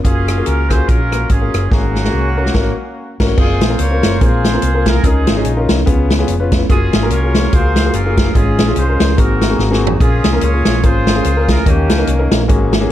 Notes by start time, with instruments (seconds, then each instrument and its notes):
0.04 fingered electric bass F#1, grand piano A#3 F4 F#4 G#4, horn section C#4 F4 G#4, kick, closed hi-hat
0.28 cross-stick, closed hi-hat
0.38 grand piano A#3 F4 F#4 G#4
0.46 fingered electric bass C#2, horn section A#4, closed hi-hat
0.70 grand piano A#3 F4 F#4 G#4, horn section C5, kick, cross-stick, closed hi-hat
0.88 fingered electric bass A#1, horn section C#4 F4 A#4, kick, closed hi-hat
1.11 grand piano A#3 F4 F#4 A#4, cross-stick, closed hi-hat
1.29 fingered electric bass G#1, horn section C#4 F4 G#4, kick, closed hi-hat
1.41 grand piano A#3 F4 F#4 G#4
1.54 fingered electric bass F#1, cross-stick, closed hi-hat
1.70 fingered electric bass G#1, grand piano G#2 A#3 C#4 F#4 G#4, horn section A#3 C#4 F#4, kick, snare
1.95 snare
2.04 grand piano A#3 C#4 F#4 G#4, snare
2.13 fingered electric bass C2
2.37 grand piano A#3 C#4 F#4 A#4
2.46 snare
2.54 fingered electric bass G#1, grand piano A#3 C#4 F#4 A#4, kick, snare, crash
3.20 fingered electric bass G#1, grand piano A#3 C#4 F#4 A#4, kick, snare, crash
3.37 fingered electric bass F#1, grand piano A#3 C4 F4 G#4, horn section F4 G#4 C5, kick, crash
3.61 fingered electric bass A#1, snare, closed hi-hat
3.70 grand piano A#3 C4 F4 A#4
3.79 fingered electric bass C#2, horn section F4 A#4 C#5, closed hi-hat
3.91 grand piano A#3 C4 F4 A#4
4.03 fingered electric bass F#1, snare, closed hi-hat
4.21 fingered electric bass A#1, grand piano A#3 C4 F4 G#4, horn section F4 G#4 C5, kick, closed hi-hat
4.44 snare, closed hi-hat
4.53 grand piano A#3 C4 F4 A#4
4.62 fingered electric bass C2, closed hi-hat
4.74 grand piano A#3 C4 F4 A#4
4.86 horn section A#4, kick, snare, closed hi-hat
5.04 fingered electric bass C#2, grand piano C#3 C#4 D#4 F4 A#4, horn section D#4 F4 G#4, kick, closed hi-hat
5.27 fingered electric bass G#1, snare, closed hi-hat
5.36 grand piano C#4 D#4 F4 G#4
5.45 fingered electric bass A#1, closed hi-hat
5.57 grand piano C#4 D#4 F4 A#4
5.69 fingered electric bass C2, snare, closed hi-hat
5.86 grand piano C#3 B3 C#4 F4 G#4, kick, closed hi-hat
6.10 snare, closed hi-hat
6.19 grand piano B3 C#4 F4 G#4
6.28 fingered electric bass F1, closed hi-hat
6.40 grand piano B3 C#4 F4 B4
6.52 kick, snare, closed hi-hat
6.69 fingered electric bass F#1, grand piano A#3 F4 F#4 G#4, horn section C#4 F4 G#4, kick, closed hi-hat
6.93 fingered electric bass G#1, snare, closed hi-hat
7.02 grand piano A#3 F4 F#4 A#4
7.10 fingered electric bass C2, horn section F4 A#4 C#5, closed hi-hat
7.24 grand piano A#3 F4 F#4 G#4
7.35 snare, closed hi-hat
7.52 fingered electric bass C#2, grand piano A#3 F4 F#4 G#4, horn section F4 G#4 C5, kick, closed hi-hat
7.76 snare, closed hi-hat
7.85 grand piano A#3 F4 F#4 G#4
7.93 fingered electric bass F#1, horn section C#4 F4 A#4, closed hi-hat
8.06 grand piano A#3 F4 F#4 G#4
8.17 kick, snare, closed hi-hat
8.34 fingered electric bass G#1, grand piano G#2 G#3 C#4 F4 G#4, horn section C#4 F4 G#4, kick, closed hi-hat
8.59 fingered electric bass A#1, snare, closed hi-hat
8.68 grand piano G#3 C#4 F4 G#4
8.76 fingered electric bass C2, horn section F4 G#4 C5, closed hi-hat
8.88 grand piano G#3 C#4 F4 A#4
9.00 fingered electric bass C#2, snare, closed hi-hat
9.17 fingered electric bass G#1, grand piano G#2 A#3 C4 F#4 G#4, horn section D#4 F#4 A#4, kick, closed hi-hat
9.41 snare, closed hi-hat
9.49 grand piano A#3 C4 F#4 G#4
9.59 fingered electric bass G#1, snare
9.71 grand piano A#3 C4 F#4 G#4, snare
9.87 floor tom
10.00 fingered electric bass A#1, grand piano A#2 A#3 C#4 F4 G#4, horn section C#4 F4 G#4, kick, closed hi-hat
10.24 fingered electric bass C2, snare, closed hi-hat
10.33 grand piano A#3 C#4 F4 A#4
10.41 fingered electric bass C#2, horn section F4 G#4 C#5, closed hi-hat
10.54 grand piano A#3 C#4 F4 G#4
10.65 fingered electric bass A#1, snare, closed hi-hat
10.83 fingered electric bass G#1, grand piano A#3 C#4 F4 A#4, horn section F4 G#4 C5, kick, closed hi-hat
11.07 snare, closed hi-hat
11.15 grand piano A#3 C#4 F4 G#4
11.24 fingered electric bass C#2, closed hi-hat
11.36 grand piano A#3 C#4 F4 A#4
11.48 horn section A#4, kick, snare, closed hi-hat
11.66 fingered electric bass D#2, grand piano D#3 A#3 C#4 D#4 G4, horn section A#3 C#4 G4, kick, closed hi-hat
11.90 fingered electric bass C#2, snare, closed hi-hat
11.98 grand piano A#3 C#4 D#4 A#4
12.07 fingered electric bass C2, closed hi-hat
12.19 grand piano A#3 C#4 D#4 A#4
12.31 fingered electric bass A#1, snare, closed hi-hat
12.48 fingered electric bass G#1, grand piano G#2 A#3 C#4 F#4 G#4, kick, closed hi-hat
12.73 snare, closed hi-hat
12.80 grand piano A#3 C#4 F#4 G#4